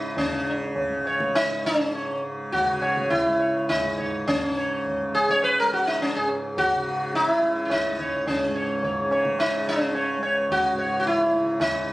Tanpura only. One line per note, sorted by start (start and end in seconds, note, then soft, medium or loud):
0.00 0.87 C#2 medium
0.00 1.46 G#2 soft
0.00 0.27 C#3 medium
0.27 2.07 C#3 medium
0.87 3.26 C#2 soft
1.47 3.83 G#2 soft
2.07 2.65 C#3 medium
2.65 4.43 C#3 medium
3.26 5.59 C#2 medium
3.83 6.16 G#2 soft
4.43 5.02 C#3 soft
5.02 6.75 C#3 medium
5.60 7.90 C#2 medium
6.16 8.47 G#2 medium
6.75 7.34 C#3 medium
7.34 9.05 C#3 soft
7.90 10.17 C#2 soft
8.48 10.72 G#2 medium
9.05 9.60 C#3 medium
9.60 11.28 C#3 medium
10.17 11.93 C#2 medium
10.73 11.93 G#2 medium
11.28 11.83 C#3 soft
11.83 11.93 C#3 medium